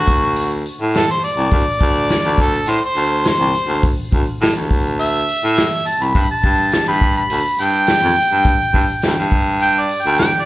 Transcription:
0.00 0.64 D2 medium
0.00 0.53 F#4 loud
0.07 kick medium
0.07 open hi-hat medium
0.36 open hi-hat medium
0.66 open hi-hat medium
0.81 1.04 A2 medium
0.94 1.09 A4 medium
0.94 snare loud
0.94 open hi-hat medium
1.11 1.24 C5 medium
1.24 2.36 D5 medium
1.24 open hi-hat medium
1.38 1.50 C2 medium
1.51 1.64 D2 medium
1.51 kick loud
1.51 open hi-hat medium
1.80 2.17 D2 medium
1.80 kick medium
1.80 open hi-hat medium
2.09 snare loud
2.09 open hi-hat medium
2.25 2.61 D2 medium
2.37 kick medium
2.37 open hi-hat medium
2.41 2.71 A4 medium
2.66 2.80 A2 medium
2.66 open hi-hat medium
2.70 2.83 C5 medium
2.85 3.26 C5 medium
2.95 3.32 D2 medium
2.95 open hi-hat soft
3.24 3.83 C5 medium
3.24 snare loud
3.24 open hi-hat medium
3.40 3.52 C2 medium
3.54 open hi-hat soft
3.67 3.92 D2 medium
3.83 kick medium
3.83 open hi-hat medium
4.12 4.25 D2 medium
4.12 kick medium
4.12 open hi-hat medium
4.41 4.53 A2 medium
4.41 snare loud
4.41 open hi-hat medium
4.56 5.27 D2 medium
4.71 kick medium
4.71 open hi-hat soft
4.99 5.89 E5 loud
4.99 open hi-hat medium
5.29 open hi-hat medium
5.44 5.67 A2 medium
5.57 snare loud
5.57 open hi-hat medium
5.86 6.04 A5 medium
5.86 open hi-hat medium
6.01 6.13 C2 medium
6.01 6.30 B5 medium
6.15 6.27 G2 medium
6.15 kick medium
6.15 open hi-hat medium
6.31 6.86 A5 medium
6.43 6.79 G2 medium
6.43 kick medium
6.43 open hi-hat medium
6.72 snare loud
6.72 open hi-hat medium
6.87 7.23 G2 medium
6.87 7.16 B5 medium
7.01 kick medium
7.01 open hi-hat medium
7.17 7.63 B5 medium
7.30 7.43 D2 medium
7.30 open hi-hat medium
7.58 7.95 G2 medium
7.58 9.29 G5 loud
7.58 open hi-hat medium
7.87 snare loud
7.87 open hi-hat medium
8.03 8.15 F2 medium
8.16 open hi-hat soft
8.32 8.55 G2 medium
8.44 kick loud
8.44 open hi-hat medium
8.74 8.86 G2 medium
8.74 kick medium
8.74 open hi-hat medium
9.02 9.16 D2 medium
9.02 snare loud
9.02 open hi-hat medium
9.19 9.89 G2 medium
9.32 kick medium
9.32 open hi-hat medium
9.60 9.82 G5 loud
9.60 open hi-hat medium
9.81 10.03 D5 medium
9.89 open hi-hat medium
10.02 10.29 D2 loud
10.02 10.19 G5 medium
10.18 10.42 G5 loud
10.18 snare loud
10.18 open hi-hat medium
10.41 10.45 D5 medium

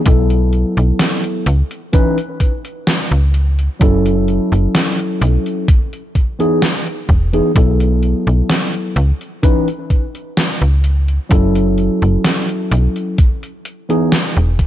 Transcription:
0.04 0.64 B1 loud
0.04 1.43 F#3 medium
0.04 1.44 B3 medium
0.04 1.44 E4 medium
0.04 1.45 A4 medium
0.04 kick loud
0.04 closed hi-hat medium
0.30 closed hi-hat soft
0.53 closed hi-hat soft
0.77 0.92 B1 medium
0.77 closed hi-hat soft
0.99 snare loud
0.99 closed hi-hat medium
1.24 closed hi-hat soft
1.46 1.63 C#2 loud
1.46 closed hi-hat medium
1.71 closed hi-hat soft
1.93 2.17 E3 loud
1.93 2.17 C#4 medium
1.93 2.17 D#4 medium
1.93 2.18 B4 loud
1.93 kick loud
1.93 closed hi-hat loud
2.18 closed hi-hat soft
2.40 kick medium
2.40 closed hi-hat medium
2.65 closed hi-hat soft
2.87 snare loud
2.87 closed hi-hat medium
3.11 3.69 C#2 medium
3.11 closed hi-hat soft
3.34 closed hi-hat medium
3.59 closed hi-hat soft
3.80 4.39 F#1 loud
3.80 5.65 F#3 medium
3.80 5.66 C#4 medium
3.80 5.66 E4 medium
3.80 5.67 A4 loud
3.80 kick loud
3.80 closed hi-hat medium
4.06 closed hi-hat soft
4.28 closed hi-hat soft
4.52 4.67 F#1 medium
4.52 closed hi-hat soft
4.75 snare loud
4.75 closed hi-hat medium
4.99 closed hi-hat soft
5.21 5.38 B1 loud
5.21 closed hi-hat medium
5.46 closed hi-hat soft
5.68 kick loud
5.68 closed hi-hat loud
5.93 closed hi-hat soft
6.15 kick medium
6.15 closed hi-hat medium
6.39 6.61 E3 medium
6.39 6.61 B3 medium
6.39 6.62 D#4 medium
6.39 6.62 G#4 loud
6.39 closed hi-hat soft
6.62 snare loud
6.62 closed hi-hat medium
6.87 closed hi-hat soft
7.09 7.41 E1 medium
7.09 kick medium
7.09 closed hi-hat medium
7.33 7.50 E3 medium
7.33 7.50 B3 medium
7.33 7.51 D#4 medium
7.33 7.51 G#4 medium
7.33 closed hi-hat soft
7.54 8.14 B1 loud
7.54 8.93 F#3 medium
7.54 8.94 B3 medium
7.54 8.94 E4 medium
7.54 8.95 A4 medium
7.54 kick loud
7.54 closed hi-hat medium
7.80 closed hi-hat soft
8.03 closed hi-hat soft
8.27 8.42 B1 medium
8.27 closed hi-hat soft
8.50 snare loud
8.50 closed hi-hat medium
8.74 closed hi-hat soft
8.96 9.13 C#2 loud
8.96 closed hi-hat medium
9.21 closed hi-hat soft
9.42 9.67 E3 medium
9.42 9.67 C#4 medium
9.42 9.67 D#4 medium
9.42 9.67 B4 loud
9.42 kick loud
9.42 closed hi-hat medium
9.68 closed hi-hat soft
9.90 kick medium
9.90 closed hi-hat medium
10.15 closed hi-hat soft
10.37 snare loud
10.37 closed hi-hat medium
10.62 11.19 C#2 medium
10.62 closed hi-hat soft
10.84 closed hi-hat medium
11.08 closed hi-hat soft
11.29 11.89 F#1 loud
11.29 13.15 F#3 medium
11.29 13.15 C#4 medium
11.29 13.16 E4 medium
11.29 13.17 A4 medium
11.29 kick loud
11.29 closed hi-hat medium
11.55 closed hi-hat soft
11.78 closed hi-hat soft
12.02 12.17 F#1 medium
12.02 closed hi-hat soft
12.24 snare loud
12.24 closed hi-hat medium
12.49 closed hi-hat soft
12.72 12.88 B1 loud
12.72 closed hi-hat medium
12.96 closed hi-hat soft
13.18 kick loud
13.18 closed hi-hat medium
13.43 closed hi-hat soft
13.65 closed hi-hat medium
13.89 14.11 E3 medium
13.89 14.11 B3 medium
13.89 14.12 D#4 medium
13.89 14.12 G#4 medium
13.89 closed hi-hat soft
14.12 snare loud
14.12 closed hi-hat medium
14.37 14.67 E1 medium
14.37 closed hi-hat soft
14.59 kick medium
14.59 closed hi-hat medium

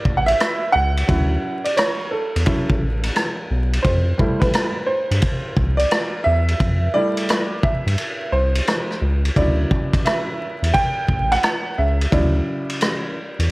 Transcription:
0.00 0.15 D5 loud
0.05 0.34 A1 medium
0.05 kick medium
0.17 0.27 F#5 medium
0.26 0.75 E5 loud
0.26 ride medium
0.40 cross-stick loud
0.40 hi-hat pedal soft
0.40 ride medium
0.72 1.03 C#2 loud
0.72 1.61 F#5 loud
0.97 ride medium
1.07 1.37 D2 loud
1.07 1.58 F#3 medium
1.07 1.58 C#4 soft
1.07 1.59 E4 medium
1.07 kick medium
1.07 ride medium
1.65 1.77 D5 medium
1.65 ride medium
1.77 2.13 C#5 medium
1.77 cross-stick loud
1.77 hi-hat pedal medium
1.77 ride medium
2.11 3.46 A4 medium
2.36 2.45 E2 medium
2.36 ride medium
2.45 2.77 F#3 soft
2.45 2.77 C#4 soft
2.45 2.77 E4 medium
2.45 kick medium
2.45 ride medium
2.70 kick medium
2.82 3.10 A1 medium
3.03 cross-stick soft
3.03 ride medium
3.16 cross-stick medium
3.16 hi-hat pedal soft
3.16 ride medium
3.51 3.79 B1 loud
3.73 ride medium
3.83 4.13 F2 loud
3.83 4.37 C5 medium
3.83 kick medium
3.83 ride medium
4.18 4.68 G3 medium
4.18 4.69 A3 soft
4.18 4.69 E4 medium
4.18 kick medium
4.40 4.88 B4 medium
4.40 kick medium
4.40 ride medium
4.53 cross-stick loud
4.53 hi-hat pedal soft
4.53 ride medium
4.87 5.75 C5 medium
5.11 5.21 G2 loud
5.11 ride medium
5.22 kick medium
5.22 ride medium
5.57 5.86 C2 medium
5.57 kick medium
5.77 6.26 D5 loud
5.77 ride medium
5.91 cross-stick loud
5.91 hi-hat pedal soft
5.91 ride medium
6.24 6.55 E2 loud
6.24 6.96 E5 loud
6.48 ride soft
6.60 6.89 F2 loud
6.60 kick loud
6.60 ride medium
6.94 7.45 G3 medium
6.94 7.45 A3 soft
6.94 7.45 E4 medium
6.94 7.65 D5 loud
7.17 ride medium
7.29 cross-stick loud
7.29 hi-hat pedal medium
7.29 ride medium
7.63 8.29 E5 medium
7.63 kick medium
7.86 7.96 G2 medium
7.86 ride medium
7.98 ride medium
8.32 8.61 C2 medium
8.32 8.98 C5 medium
8.55 ride medium
8.67 cross-stick medium
8.67 hi-hat pedal soft
8.67 ride medium
8.91 cross-stick soft
9.02 9.30 C#2 loud
9.25 ride medium
9.36 9.65 D2 loud
9.36 10.36 C#3 soft
9.36 10.36 F#3 soft
9.36 10.36 E4 medium
9.36 10.08 D5 medium
9.36 kick medium
9.36 ride medium
9.71 kick medium
9.93 kick medium
9.93 ride medium
10.05 10.70 E5 medium
10.05 cross-stick loud
10.05 hi-hat pedal soft
10.05 ride medium
10.63 10.72 E2 medium
10.63 ride medium
10.74 11.33 G5 loud
10.74 kick medium
10.74 ride medium
11.08 11.37 A1 medium
11.08 kick medium
11.32 11.79 F#5 loud
11.32 cross-stick soft
11.32 ride medium
11.43 cross-stick loud
11.43 hi-hat pedal soft
11.43 ride medium
11.78 12.07 C#2 loud
11.78 12.13 E5 medium
12.01 ride medium
12.12 12.41 D2 loud
12.12 13.12 C#3 medium
12.12 13.11 F#3 medium
12.12 13.12 E4 medium
12.12 13.51 D5 medium
12.12 kick medium
12.12 ride medium
12.70 ride medium
12.81 cross-stick loud
12.81 hi-hat pedal soft
12.81 ride medium
13.39 13.48 E2 medium
13.39 ride medium

